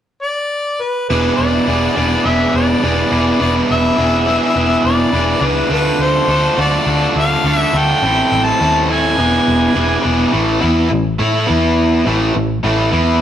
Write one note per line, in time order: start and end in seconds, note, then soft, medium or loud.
0.22 0.83 D5 medium
0.81 1.08 B4 medium
1.09 1.30 E1 medium
1.09 1.68 E3 medium
1.09 1.68 B3 medium
1.09 1.69 D4 medium
1.09 1.69 G#4 medium
1.09 1.36 B4 medium
1.37 1.58 E1 medium
1.37 2.27 D5 medium
1.67 1.87 E1 medium
1.67 1.96 E3 medium
1.67 1.96 B3 medium
1.67 1.97 D4 medium
1.67 1.97 G#4 medium
1.96 2.16 E1 medium
1.96 2.24 E3 medium
1.96 2.25 B3 medium
1.96 2.26 D4 medium
1.96 2.26 G#4 medium
2.25 2.45 E1 medium
2.25 2.82 E3 medium
2.25 2.82 B3 medium
2.25 2.84 D4 medium
2.25 2.84 G#4 medium
2.25 2.54 E5 medium
2.54 2.74 E1 medium
2.54 3.37 D5 medium
2.83 3.03 E1 medium
2.83 3.09 E3 medium
2.83 3.10 B3 medium
2.83 3.12 D4 medium
2.83 3.11 G#4 medium
3.11 3.31 E1 medium
3.11 3.38 E3 medium
3.11 3.39 B3 medium
3.11 3.39 D4 medium
3.11 3.40 G#4 medium
3.40 3.61 E1 medium
3.40 3.96 E3 medium
3.40 3.97 B3 medium
3.40 3.99 D4 medium
3.40 3.97 G#4 medium
3.40 3.54 D5 medium
3.70 3.90 E1 medium
3.70 4.81 E5 medium
3.97 4.38 E1 medium
3.97 4.26 E3 medium
3.97 4.26 B3 medium
3.97 4.28 D4 medium
3.97 4.27 G#4 medium
4.27 4.53 E3 medium
4.27 4.55 B3 medium
4.27 4.55 D4 medium
4.27 4.55 G#4 medium
4.55 4.75 E1 medium
4.55 5.11 E3 medium
4.55 5.11 B3 medium
4.55 5.12 D4 medium
4.55 5.13 G#4 medium
4.84 5.04 E1 medium
4.84 5.46 D5 medium
5.12 5.33 E1 medium
5.12 5.39 E3 medium
5.12 5.40 B3 medium
5.12 5.40 D4 medium
5.12 5.41 G#4 medium
5.41 5.61 C#2 medium
5.41 5.68 E3 medium
5.41 5.68 B3 medium
5.41 5.69 D4 medium
5.41 5.69 G#4 medium
5.45 5.72 B4 medium
5.69 5.90 D2 medium
5.69 6.27 D3 medium
5.69 6.28 A3 medium
5.69 6.28 D4 medium
5.69 6.29 F4 medium
5.69 6.29 A4 medium
5.69 6.04 B4 medium
5.99 6.19 D2 medium
5.99 6.59 C5 medium
6.27 6.48 D2 medium
6.27 6.56 D3 medium
6.27 6.57 A3 medium
6.27 6.57 D4 medium
6.27 6.58 F4 medium
6.27 6.59 A4 medium
6.57 6.77 D2 medium
6.57 6.86 D3 medium
6.57 6.86 A3 medium
6.57 6.86 D4 medium
6.57 6.86 F4 medium
6.57 6.87 A4 medium
6.57 7.13 D5 medium
6.86 7.06 D2 medium
6.86 7.44 D3 medium
6.86 7.44 A3 medium
6.86 7.45 D4 medium
6.86 7.45 F4 medium
6.86 7.46 A4 medium
7.16 7.35 D2 medium
7.16 7.57 F5 medium
7.44 7.64 D2 medium
7.44 7.73 D3 medium
7.44 7.73 A3 medium
7.44 7.74 D4 medium
7.44 7.74 F4 medium
7.44 7.75 A4 medium
7.57 7.79 E5 medium
7.73 7.93 D2 medium
7.73 8.01 D3 medium
7.73 8.01 A3 medium
7.73 8.01 D4 medium
7.73 8.01 F4 medium
7.73 8.02 A4 medium
7.77 8.46 G5 medium
8.02 8.22 A1 medium
8.02 8.58 A2 medium
8.02 8.59 E3 medium
8.02 8.59 A3 medium
8.02 8.60 C4 medium
8.02 8.60 E4 medium
8.02 8.61 A4 medium
8.32 8.51 A1 medium
8.44 8.81 A5 medium
8.59 9.20 D#2 medium
8.59 8.88 A2 medium
8.59 8.89 E3 medium
8.59 8.89 A3 medium
8.59 8.89 C4 medium
8.59 8.90 E4 medium
8.59 8.91 A4 medium
8.89 9.16 A2 medium
8.89 9.16 E3 medium
8.89 9.16 A3 medium
8.89 9.17 C4 medium
8.89 9.17 E4 medium
8.89 9.17 A4 medium
8.89 10.02 G#5 medium
9.18 9.38 E1 medium
9.18 9.73 E3 medium
9.18 9.74 B3 medium
9.18 9.74 D4 medium
9.18 9.75 G#4 medium
9.48 9.67 E1 medium
9.74 9.95 E1 medium
9.74 10.01 E3 medium
9.74 10.02 B3 medium
9.74 10.02 D4 medium
9.74 10.03 G#4 medium
10.02 10.24 E1 medium
10.02 10.30 E3 medium
10.02 10.31 B3 medium
10.02 10.31 D4 medium
10.02 10.31 G#4 medium
10.31 10.60 A1 medium
10.31 10.60 A2 medium
10.31 10.59 E3 loud
10.31 10.61 A3 medium
10.61 10.89 E2 medium
10.61 10.89 E3 medium
10.61 10.89 B3 medium
10.61 10.90 E4 medium
10.90 11.18 A1 medium
10.90 11.13 A2 medium
10.90 11.13 E3 medium
11.19 11.46 A2 medium
11.19 11.47 A3 medium
11.19 11.46 E4 medium
11.19 11.48 A4 medium
11.46 12.02 E2 medium
11.46 12.04 E3 medium
11.46 12.04 B3 medium
11.46 12.04 E4 medium
12.06 12.33 A1 medium
12.06 12.33 A2 medium
12.06 12.33 E3 medium
12.06 12.34 A3 loud
12.34 12.62 A1 medium
12.34 12.57 A2 medium
12.34 12.57 E3 medium
12.63 12.90 A1 medium
12.63 12.91 A2 loud
12.63 12.90 E3 medium
12.63 12.92 A3 loud
12.91 13.19 E2 medium
12.91 13.19 E3 medium
12.91 13.20 B3 medium
12.91 13.20 E4 loud